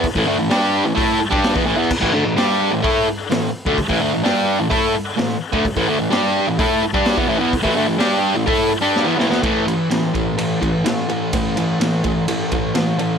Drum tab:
CC |----------------|x---------------|----------------|----------------|
RD |----------------|----------------|----------------|----------------|
HH |o---o---o---o---|----o---o---o---|o---o---o---o---|o---o---o---o---|
SD |----o-------oo--|----o-------o---|----o-------o---|----o-------o---|
BD |oo------o--o-o--|oo------o------o|oo------o------o|oo------o--o-o--|

CC |----------------|----------------|----------------|
RD |----------------|x-x-x-x-x-x-x-x-|x-x-x-x-x-x-x-x-|
HH |o---o---o-------|----------------|----------------|
SD |----o-------o-oo|----o-------o---|----o-------o---|
BD |oo------o-------|o-----o---o-----|o-----o---o-----|